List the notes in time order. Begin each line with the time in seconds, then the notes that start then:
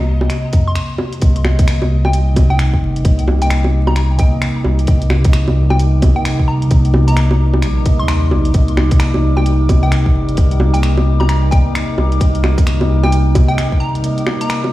Already playing: C2 C3 A#3 D#5
0.21 low bongo
0.30 finger snap, closed hi-hat
0.53 F2, kick, closed hi-hat
0.68 C6
0.75 finger snap, closed hi-hat
0.98 low bongo
1.13 closed hi-hat
1.20 C2 C3 A#3, kick, closed hi-hat
1.24 D#5
1.36 closed hi-hat
1.45 G3, finger snap, low bongo
1.55 C3 A#3
1.59 D#5, kick, closed hi-hat
1.68 finger snap, closed hi-hat
1.77 D#4
1.82 low bongo
1.89 D6
2.05 A#4 G5, low bongo
2.13 closed hi-hat
2.34 C3 A#3, kick, closed hi-hat, low bongo
2.38 D#5
2.48 C2 C3 A#3 G5
2.52 D#5
2.59 finger snap, closed hi-hat
2.74 kick
2.82 G1
2.96 closed hi-hat
3.03 C2 C3 A#3, kick, closed hi-hat
3.07 D#5
3.19 closed hi-hat
3.28 low bongo
3.38 C3, closed hi-hat
3.42 A#3 G5
3.46 D#5
3.50 finger snap, closed hi-hat
3.64 low bongo
3.87 A#5, low bongo
3.96 A#5, finger snap, closed hi-hat
4.16 C3 A#3 G5, kick, closed hi-hat
4.20 D#5
4.31 C3 A#3 D#5
4.42 finger snap, closed hi-hat
4.64 C2, low bongo
4.79 closed hi-hat
4.86 C2 C3 A#3, kick, closed hi-hat
4.90 D#5
5.02 closed hi-hat
5.10 finger snap, low bongo
5.21 C3, closed hi-hat
5.25 A#3, kick
5.29 D#5
5.33 finger snap, closed hi-hat
5.48 low bongo
5.70 G5, low bongo
5.79 closed hi-hat
6.00 C3 A#3, kick, closed hi-hat, low bongo
6.04 D#5
6.14 C3 A#3 G5
6.18 D#5
6.25 finger snap, closed hi-hat
6.39 kick
6.48 A#5
6.62 closed hi-hat
6.68 C2 C3 A#3 D#5, kick, closed hi-hat
6.85 closed hi-hat
6.94 low bongo
7.04 C3 A#3 A#5
7.08 D#5, closed hi-hat
7.17 finger snap, closed hi-hat
7.31 low bongo
7.54 low bongo
7.62 A#1, finger snap, closed hi-hat
7.84 C3 A#3 D#5, kick, closed hi-hat
7.98 D#2 C3 A#3 D#5 C6
8.08 finger snap, closed hi-hat
8.31 A#1, low bongo
8.45 closed hi-hat
8.53 C2 C3 A#3, kick, closed hi-hat
8.57 D#5
8.68 closed hi-hat
8.77 finger snap, low bongo
8.88 C3 A#3, kick, closed hi-hat
8.96 D#5, finger snap, closed hi-hat
9.14 low bongo
9.37 G5, low bongo
9.46 closed hi-hat
9.67 C3 A#3 D#5, kick, closed hi-hat, low bongo
9.82 C2 C3 A#3 D#5 G5
9.92 finger snap, closed hi-hat
10.06 kick
10.14 G1
10.29 closed hi-hat
10.35 C2 C3 A#3 D#5, kick, closed hi-hat
10.51 closed hi-hat
10.60 low bongo
10.71 C3 A#3 G5, closed hi-hat
10.79 D#5
10.83 finger snap, closed hi-hat
10.97 low bongo
11.20 A#5, low bongo
11.29 A#5, finger snap, closed hi-hat
11.50 C3 A#3 D#5 G5, kick, closed hi-hat
11.64 C3 A#3 D#5
11.75 finger snap, closed hi-hat
11.98 C2, low bongo
12.12 closed hi-hat
12.19 C2 C3 A#3 D#5, kick, closed hi-hat
12.35 closed hi-hat
12.44 finger snap, low bongo
12.54 C3
12.58 A#3 D#5, kick, closed hi-hat
12.67 finger snap, closed hi-hat
12.81 low bongo
13.03 G5, low bongo
13.12 closed hi-hat
13.33 C3 A#3 D#5, kick, closed hi-hat, low bongo
13.48 C3 A#3 D#5 G5
13.58 finger snap, closed hi-hat
13.72 kick
13.80 A#5
13.95 closed hi-hat
14.02 C3 A#3, closed hi-hat
14.06 D#5
14.18 closed hi-hat
14.27 finger snap, low bongo
14.36 C3
14.40 A#3 D#5 A#5, closed hi-hat
14.50 finger snap, closed hi-hat
14.64 low bongo